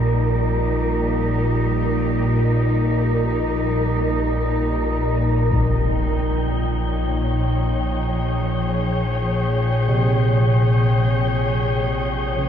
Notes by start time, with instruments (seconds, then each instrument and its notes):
Already playing: synth drone A#1 A#2, cello section A#2 G3 D#4 G4, synth texture A#4
5.50 synth texture G5, impact
5.79 cello section F3
6.77 cello section C#5
7.88 cello section G#4
9.89 kettle gongs C3
12.38 kettle gongs C#3